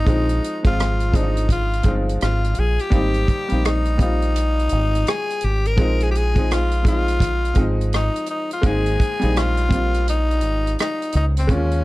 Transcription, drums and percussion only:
0.07 kick, closed hi-hat
0.29 closed hi-hat
0.44 closed hi-hat
0.64 kick, closed hi-hat
0.80 cross-stick, closed hi-hat
1.00 closed hi-hat
1.14 kick, closed hi-hat
1.37 closed hi-hat
1.49 kick, closed hi-hat
1.73 closed hi-hat
1.83 kick, closed hi-hat
2.09 closed hi-hat
2.21 cross-stick, closed hi-hat
2.44 closed hi-hat
2.55 closed hi-hat
2.79 closed hi-hat
2.92 kick, closed hi-hat
3.14 closed hi-hat
3.28 kick, closed hi-hat
3.49 closed hi-hat
3.65 cross-stick, closed hi-hat
3.85 closed hi-hat
3.99 kick, closed hi-hat
4.22 closed hi-hat
4.36 closed hi-hat
4.59 closed hi-hat
4.69 closed hi-hat
4.95 closed hi-hat
5.07 cross-stick, closed hi-hat
5.30 closed hi-hat
5.41 closed hi-hat
5.65 closed hi-hat
5.78 kick, closed hi-hat
6.00 closed hi-hat
6.15 closed hi-hat
6.36 kick, closed hi-hat
6.51 cross-stick, closed hi-hat
6.71 closed hi-hat
6.85 kick, cross-stick, closed hi-hat
7.08 closed hi-hat
7.20 kick, closed hi-hat
7.45 closed hi-hat
7.55 kick, closed hi-hat
7.81 closed hi-hat
7.93 cross-stick, closed hi-hat
8.16 closed hi-hat
8.26 closed hi-hat
8.51 closed hi-hat
8.63 kick, closed hi-hat
8.86 closed hi-hat
9.00 kick, closed hi-hat
9.22 closed hi-hat
9.36 cross-stick, closed hi-hat
9.57 closed hi-hat
9.71 kick, closed hi-hat
9.94 closed hi-hat
10.08 closed hi-hat
10.31 closed hi-hat
10.41 closed hi-hat
10.67 closed hi-hat
10.79 cross-stick, closed hi-hat
11.02 closed hi-hat
11.12 closed hi-hat
11.37 cross-stick, closed hi-hat
11.49 kick, closed hi-hat
11.71 closed hi-hat

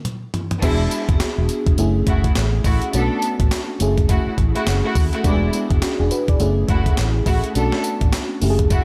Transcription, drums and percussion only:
0.05 closed hi-hat, mid tom
0.34 closed hi-hat, floor tom
0.51 closed hi-hat, floor tom
0.62 kick, closed hi-hat, crash, tambourine
0.91 closed hi-hat, tambourine
1.09 kick, closed hi-hat
1.20 snare, clap, closed hi-hat, tambourine
1.49 closed hi-hat, tambourine
1.67 kick, closed hi-hat
1.78 closed hi-hat, tambourine
2.07 kick, closed hi-hat
2.24 kick, closed hi-hat
2.35 snare, clap, closed hi-hat, tambourine
2.64 kick, open hi-hat, tambourine
2.82 closed hi-hat
2.93 closed hi-hat, tambourine
3.22 closed hi-hat, tambourine
3.40 kick, closed hi-hat
3.51 snare, clap, closed hi-hat, tambourine
3.80 closed hi-hat, tambourine
3.98 kick, closed hi-hat
4.09 kick, closed hi-hat, tambourine
4.38 kick, closed hi-hat
4.56 closed hi-hat
4.67 snare, clap, closed hi-hat, tambourine
4.95 kick, open hi-hat, tambourine
5.13 closed hi-hat
5.24 kick, closed hi-hat, tambourine
5.53 closed hi-hat, tambourine
5.70 kick, closed hi-hat
5.82 snare, clap, closed hi-hat, tambourine
6.11 closed hi-hat, tambourine
6.28 kick, closed hi-hat
6.40 closed hi-hat, tambourine
6.69 kick, closed hi-hat
6.86 kick, closed hi-hat
6.97 snare, clap, closed hi-hat, tambourine
7.26 kick, open hi-hat, tambourine
7.44 closed hi-hat
7.55 closed hi-hat, tambourine
7.72 snare
7.84 closed hi-hat, tambourine
8.01 kick, closed hi-hat
8.13 snare, clap, closed hi-hat, tambourine
8.42 open hi-hat, tambourine
8.59 kick, closed hi-hat
8.70 kick, closed hi-hat, tambourine

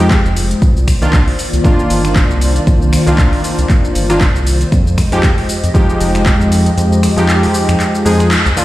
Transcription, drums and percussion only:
0.11 kick, clap, closed hi-hat, shaker
0.26 shaker
0.37 open hi-hat, shaker
0.51 closed hi-hat, shaker
0.62 kick, closed hi-hat, shaker
0.77 shaker
0.88 finger snap, kick, open hi-hat, shaker
1.02 closed hi-hat, shaker
1.13 kick, clap, closed hi-hat, shaker
1.28 open hi-hat
1.39 open hi-hat, shaker
1.53 closed hi-hat, shaker
1.65 kick, closed hi-hat, shaker
1.79 shaker
1.90 open hi-hat, shaker
2.05 finger snap, closed hi-hat, shaker
2.16 kick, clap, closed hi-hat, shaker
2.31 shaker
2.41 open hi-hat, shaker
2.56 closed hi-hat, shaker
2.67 kick, closed hi-hat, shaker
2.82 shaker
2.93 finger snap, open hi-hat, shaker
3.07 closed hi-hat, shaker
3.18 kick, clap, closed hi-hat, shaker
3.33 open hi-hat
3.44 open hi-hat, shaker
3.59 closed hi-hat, shaker
3.70 kick, clap, closed hi-hat, shaker
3.85 shaker
3.95 open hi-hat, shaker
4.10 finger snap, closed hi-hat, shaker
4.21 kick, clap, closed hi-hat, shaker
4.36 shaker
4.47 open hi-hat, shaker
4.61 closed hi-hat, shaker
4.72 kick, closed hi-hat, shaker
4.87 shaker
4.98 finger snap, kick, open hi-hat, shaker
5.12 closed hi-hat, shaker
5.23 kick, clap, closed hi-hat, shaker
5.38 open hi-hat
5.49 open hi-hat, shaker
5.64 closed hi-hat, shaker
5.75 kick, closed hi-hat, shaker
5.90 shaker
6.00 open hi-hat, shaker
6.15 finger snap, closed hi-hat, shaker
6.26 kick, clap, closed hi-hat, shaker
6.41 shaker
6.52 open hi-hat, shaker
6.66 closed hi-hat, shaker
6.78 closed hi-hat, shaker
6.92 shaker
7.03 finger snap, open hi-hat, shaker
7.18 closed hi-hat, shaker
7.29 clap, closed hi-hat, shaker
7.43 open hi-hat, shaker
7.54 open hi-hat, shaker
7.69 finger snap, closed hi-hat, shaker
7.80 clap, closed hi-hat, shaker
7.95 shaker
8.06 open hi-hat, shaker
8.20 finger snap, closed hi-hat, shaker
8.31 clap, closed hi-hat, shaker
8.46 shaker
8.57 open hi-hat, shaker

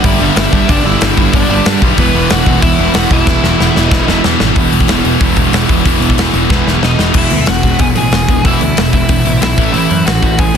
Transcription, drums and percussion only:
0.04 kick, open hi-hat
0.36 snare, open hi-hat
0.53 kick
0.69 kick, open hi-hat
1.01 snare, open hi-hat
1.17 kick
1.33 kick, open hi-hat
1.65 snare, open hi-hat
1.82 kick
1.98 kick, open hi-hat
2.30 snare, open hi-hat
2.46 kick
2.62 kick, open hi-hat
2.94 snare, open hi-hat
3.11 kick
3.27 kick, snare
3.44 snare
3.60 snare
3.76 snare
3.91 kick, snare
4.08 snare
4.24 snare
4.40 snare
4.56 kick, open hi-hat
4.73 open hi-hat
4.80 kick
4.88 snare, open hi-hat
5.05 open hi-hat
5.21 kick, open hi-hat
5.36 kick, open hi-hat
5.53 snare, open hi-hat
5.69 kick, open hi-hat
5.86 kick, open hi-hat
6.02 open hi-hat
6.10 kick
6.18 snare, open hi-hat
6.34 open hi-hat
6.50 kick, snare
6.67 snare
6.83 snare
6.99 snare
7.14 kick, crash
7.30 open hi-hat
7.46 snare, open hi-hat
7.63 kick, open hi-hat
7.79 kick, open hi-hat
7.96 open hi-hat
8.12 snare, open hi-hat
8.28 kick, open hi-hat
8.45 kick, open hi-hat
8.61 open hi-hat
8.77 snare, open hi-hat
8.93 kick, open hi-hat
9.09 kick, open hi-hat
9.26 open hi-hat
9.42 snare, open hi-hat
9.58 kick, open hi-hat
9.74 open hi-hat
9.91 open hi-hat
10.07 snare, open hi-hat
10.23 kick, open hi-hat
10.39 kick, open hi-hat

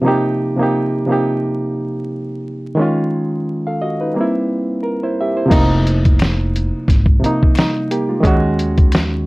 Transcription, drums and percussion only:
5.51 kick, closed hi-hat, crash
5.87 closed hi-hat
6.05 kick, closed hi-hat
6.19 finger snap, snare, closed hi-hat
6.56 closed hi-hat
6.88 kick, snare, closed hi-hat
7.06 kick
7.24 closed hi-hat
7.43 kick
7.55 finger snap, snare, closed hi-hat
7.91 closed hi-hat
8.24 kick, closed hi-hat
8.59 closed hi-hat
8.78 kick, closed hi-hat
8.92 finger snap, snare, closed hi-hat

